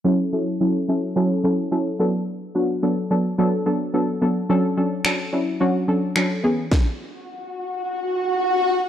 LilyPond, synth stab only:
\new Staff \with { instrumentName = "Synth stab" } { \time 4/4 \key fis \minor \tempo 4 = 108 <fis cis' e' a'>8 <fis cis' e' a'>8 <fis cis' e' a'>8 <fis cis' e' a'>8 <fis cis' e' a'>8 <fis cis' e' a'>8 <fis cis' e' a'>8 <fis b d' a'>8~ | <fis b d' a'>8 <fis b d' fis'>8 <fis b d' a'>8 <fis b d' a'>8 <fis b d' a'>8 <fis b d' a'>8 <fis b d' a'>8 <fis b d' a'>8 | <fis cis' d' a'>8 <fis cis' d' a'>8 <fis cis' d' a'>8 <fis cis' d' e'>8 <fis cis' d' fis'>8 <fis cis' d' a'>8 <fis cis' d' a'>8 <e b cis' gis'>8 | r1 | }